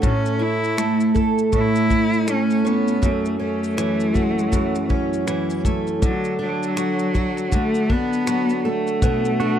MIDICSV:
0, 0, Header, 1, 5, 480
1, 0, Start_track
1, 0, Key_signature, 2, "major"
1, 0, Tempo, 749064
1, 21, Time_signature, 4, 2, 24, 8
1, 6147, End_track
2, 0, Start_track
2, 0, Title_t, "Pedal steel guitar"
2, 0, Program_c, 0, 26
2, 6022, Note_on_c, 0, 66, 89
2, 6147, Note_off_c, 0, 66, 0
2, 6147, End_track
3, 0, Start_track
3, 0, Title_t, "Cello"
3, 0, Program_c, 1, 42
3, 31, Note_on_c, 1, 61, 84
3, 271, Note_on_c, 1, 64, 96
3, 281, Note_off_c, 1, 61, 0
3, 745, Note_off_c, 1, 64, 0
3, 999, Note_on_c, 1, 64, 110
3, 1474, Note_on_c, 1, 61, 89
3, 1484, Note_off_c, 1, 64, 0
3, 1709, Note_on_c, 1, 59, 90
3, 1719, Note_off_c, 1, 61, 0
3, 1952, Note_on_c, 1, 57, 78
3, 1962, Note_off_c, 1, 59, 0
3, 2181, Note_off_c, 1, 57, 0
3, 2185, Note_on_c, 1, 57, 88
3, 3597, Note_off_c, 1, 57, 0
3, 3874, Note_on_c, 1, 54, 78
3, 4091, Note_off_c, 1, 54, 0
3, 4114, Note_on_c, 1, 54, 87
3, 4839, Note_on_c, 1, 57, 95
3, 4849, Note_off_c, 1, 54, 0
3, 5079, Note_on_c, 1, 59, 104
3, 5089, Note_off_c, 1, 57, 0
3, 5563, Note_on_c, 1, 57, 94
3, 5572, Note_off_c, 1, 59, 0
3, 6147, Note_off_c, 1, 57, 0
3, 6147, End_track
4, 0, Start_track
4, 0, Title_t, "Twelve-string acoustic guitar"
4, 0, Program_c, 2, 25
4, 0, Note_on_c, 2, 54, 59
4, 0, Note_on_c, 2, 57, 61
4, 0, Note_on_c, 2, 62, 51
4, 0, Note_on_c, 2, 66, 54
4, 12, Note_on_c, 2, 45, 70
4, 74, Note_off_c, 2, 54, 0
4, 74, Note_off_c, 2, 62, 0
4, 74, Note_off_c, 2, 66, 0
4, 252, Note_on_c, 2, 64, 57
4, 495, Note_off_c, 2, 57, 0
4, 495, Note_on_c, 2, 57, 61
4, 734, Note_on_c, 2, 69, 56
4, 967, Note_off_c, 2, 45, 0
4, 975, Note_on_c, 2, 45, 65
4, 1212, Note_off_c, 2, 64, 0
4, 1214, Note_on_c, 2, 64, 58
4, 1453, Note_off_c, 2, 57, 0
4, 1456, Note_on_c, 2, 57, 64
4, 1696, Note_on_c, 2, 61, 57
4, 1932, Note_off_c, 2, 45, 0
4, 1934, Note_on_c, 2, 42, 68
4, 2173, Note_off_c, 2, 64, 0
4, 2176, Note_off_c, 2, 61, 0
4, 2176, Note_on_c, 2, 61, 54
4, 2414, Note_off_c, 2, 57, 0
4, 2416, Note_on_c, 2, 52, 60
4, 2651, Note_off_c, 2, 69, 0
4, 2654, Note_on_c, 2, 66, 57
4, 2887, Note_off_c, 2, 42, 0
4, 2895, Note_on_c, 2, 42, 67
4, 3129, Note_off_c, 2, 61, 0
4, 3136, Note_on_c, 2, 61, 55
4, 3370, Note_off_c, 2, 52, 0
4, 3377, Note_on_c, 2, 52, 61
4, 3620, Note_on_c, 2, 57, 59
4, 3857, Note_on_c, 2, 50, 69
4, 3915, Note_off_c, 2, 42, 0
4, 3916, Note_off_c, 2, 52, 0
4, 3916, Note_off_c, 2, 61, 0
4, 4093, Note_on_c, 2, 62, 58
4, 4335, Note_on_c, 2, 54, 58
4, 4574, Note_off_c, 2, 66, 0
4, 4577, Note_on_c, 2, 66, 57
4, 4813, Note_off_c, 2, 50, 0
4, 4815, Note_on_c, 2, 50, 62
4, 5056, Note_off_c, 2, 62, 0
4, 5059, Note_on_c, 2, 62, 53
4, 5299, Note_off_c, 2, 54, 0
4, 5302, Note_on_c, 2, 54, 64
4, 5540, Note_off_c, 2, 57, 0
4, 5542, Note_on_c, 2, 57, 58
4, 5780, Note_off_c, 2, 50, 0
4, 5783, Note_on_c, 2, 47, 73
4, 6023, Note_off_c, 2, 62, 0
4, 6025, Note_on_c, 2, 62, 58
4, 6147, Note_off_c, 2, 47, 0
4, 6147, Note_off_c, 2, 54, 0
4, 6147, Note_off_c, 2, 57, 0
4, 6147, Note_off_c, 2, 62, 0
4, 6147, Note_off_c, 2, 66, 0
4, 6147, End_track
5, 0, Start_track
5, 0, Title_t, "Drums"
5, 20, Note_on_c, 9, 36, 95
5, 20, Note_on_c, 9, 82, 63
5, 84, Note_off_c, 9, 36, 0
5, 85, Note_off_c, 9, 82, 0
5, 165, Note_on_c, 9, 82, 45
5, 229, Note_off_c, 9, 82, 0
5, 409, Note_on_c, 9, 82, 42
5, 473, Note_off_c, 9, 82, 0
5, 502, Note_on_c, 9, 26, 109
5, 505, Note_on_c, 9, 82, 67
5, 566, Note_off_c, 9, 26, 0
5, 569, Note_off_c, 9, 82, 0
5, 643, Note_on_c, 9, 82, 48
5, 707, Note_off_c, 9, 82, 0
5, 739, Note_on_c, 9, 82, 37
5, 741, Note_on_c, 9, 36, 76
5, 803, Note_off_c, 9, 82, 0
5, 805, Note_off_c, 9, 36, 0
5, 886, Note_on_c, 9, 82, 49
5, 950, Note_off_c, 9, 82, 0
5, 977, Note_on_c, 9, 82, 66
5, 979, Note_on_c, 9, 36, 77
5, 1041, Note_off_c, 9, 82, 0
5, 1043, Note_off_c, 9, 36, 0
5, 1124, Note_on_c, 9, 82, 49
5, 1188, Note_off_c, 9, 82, 0
5, 1220, Note_on_c, 9, 36, 79
5, 1224, Note_on_c, 9, 82, 40
5, 1284, Note_off_c, 9, 36, 0
5, 1288, Note_off_c, 9, 82, 0
5, 1367, Note_on_c, 9, 82, 37
5, 1431, Note_off_c, 9, 82, 0
5, 1459, Note_on_c, 9, 82, 68
5, 1460, Note_on_c, 9, 26, 84
5, 1523, Note_off_c, 9, 82, 0
5, 1524, Note_off_c, 9, 26, 0
5, 1603, Note_on_c, 9, 82, 41
5, 1667, Note_off_c, 9, 82, 0
5, 1706, Note_on_c, 9, 82, 48
5, 1770, Note_off_c, 9, 82, 0
5, 1843, Note_on_c, 9, 82, 38
5, 1907, Note_off_c, 9, 82, 0
5, 1940, Note_on_c, 9, 36, 99
5, 1940, Note_on_c, 9, 82, 64
5, 2004, Note_off_c, 9, 36, 0
5, 2005, Note_off_c, 9, 82, 0
5, 2085, Note_on_c, 9, 82, 44
5, 2149, Note_off_c, 9, 82, 0
5, 2330, Note_on_c, 9, 82, 42
5, 2394, Note_off_c, 9, 82, 0
5, 2423, Note_on_c, 9, 26, 107
5, 2426, Note_on_c, 9, 82, 66
5, 2487, Note_off_c, 9, 26, 0
5, 2490, Note_off_c, 9, 82, 0
5, 2564, Note_on_c, 9, 82, 46
5, 2628, Note_off_c, 9, 82, 0
5, 2660, Note_on_c, 9, 82, 41
5, 2662, Note_on_c, 9, 36, 67
5, 2724, Note_off_c, 9, 82, 0
5, 2726, Note_off_c, 9, 36, 0
5, 2812, Note_on_c, 9, 82, 48
5, 2876, Note_off_c, 9, 82, 0
5, 2900, Note_on_c, 9, 36, 77
5, 2901, Note_on_c, 9, 82, 69
5, 2964, Note_off_c, 9, 36, 0
5, 2965, Note_off_c, 9, 82, 0
5, 3046, Note_on_c, 9, 82, 53
5, 3110, Note_off_c, 9, 82, 0
5, 3140, Note_on_c, 9, 36, 78
5, 3205, Note_off_c, 9, 36, 0
5, 3290, Note_on_c, 9, 82, 43
5, 3354, Note_off_c, 9, 82, 0
5, 3380, Note_on_c, 9, 82, 68
5, 3381, Note_on_c, 9, 26, 85
5, 3444, Note_off_c, 9, 82, 0
5, 3445, Note_off_c, 9, 26, 0
5, 3525, Note_on_c, 9, 82, 41
5, 3589, Note_off_c, 9, 82, 0
5, 3619, Note_on_c, 9, 36, 75
5, 3624, Note_on_c, 9, 82, 52
5, 3684, Note_off_c, 9, 36, 0
5, 3688, Note_off_c, 9, 82, 0
5, 3762, Note_on_c, 9, 82, 39
5, 3826, Note_off_c, 9, 82, 0
5, 3860, Note_on_c, 9, 36, 105
5, 3860, Note_on_c, 9, 82, 62
5, 3924, Note_off_c, 9, 36, 0
5, 3924, Note_off_c, 9, 82, 0
5, 4002, Note_on_c, 9, 82, 44
5, 4066, Note_off_c, 9, 82, 0
5, 4248, Note_on_c, 9, 82, 45
5, 4312, Note_off_c, 9, 82, 0
5, 4339, Note_on_c, 9, 26, 110
5, 4342, Note_on_c, 9, 82, 61
5, 4403, Note_off_c, 9, 26, 0
5, 4406, Note_off_c, 9, 82, 0
5, 4480, Note_on_c, 9, 82, 45
5, 4544, Note_off_c, 9, 82, 0
5, 4579, Note_on_c, 9, 82, 36
5, 4581, Note_on_c, 9, 36, 70
5, 4643, Note_off_c, 9, 82, 0
5, 4645, Note_off_c, 9, 36, 0
5, 4724, Note_on_c, 9, 26, 32
5, 4728, Note_on_c, 9, 82, 46
5, 4789, Note_off_c, 9, 26, 0
5, 4792, Note_off_c, 9, 82, 0
5, 4819, Note_on_c, 9, 82, 65
5, 4820, Note_on_c, 9, 36, 79
5, 4883, Note_off_c, 9, 82, 0
5, 4884, Note_off_c, 9, 36, 0
5, 4963, Note_on_c, 9, 82, 45
5, 5027, Note_off_c, 9, 82, 0
5, 5061, Note_on_c, 9, 36, 79
5, 5125, Note_off_c, 9, 36, 0
5, 5209, Note_on_c, 9, 82, 42
5, 5273, Note_off_c, 9, 82, 0
5, 5300, Note_on_c, 9, 82, 71
5, 5301, Note_on_c, 9, 26, 82
5, 5364, Note_off_c, 9, 82, 0
5, 5365, Note_off_c, 9, 26, 0
5, 5444, Note_on_c, 9, 82, 39
5, 5509, Note_off_c, 9, 82, 0
5, 5685, Note_on_c, 9, 82, 39
5, 5749, Note_off_c, 9, 82, 0
5, 5781, Note_on_c, 9, 36, 101
5, 5782, Note_on_c, 9, 82, 65
5, 5845, Note_off_c, 9, 36, 0
5, 5846, Note_off_c, 9, 82, 0
5, 5926, Note_on_c, 9, 82, 47
5, 5991, Note_off_c, 9, 82, 0
5, 6024, Note_on_c, 9, 82, 42
5, 6088, Note_off_c, 9, 82, 0
5, 6147, End_track
0, 0, End_of_file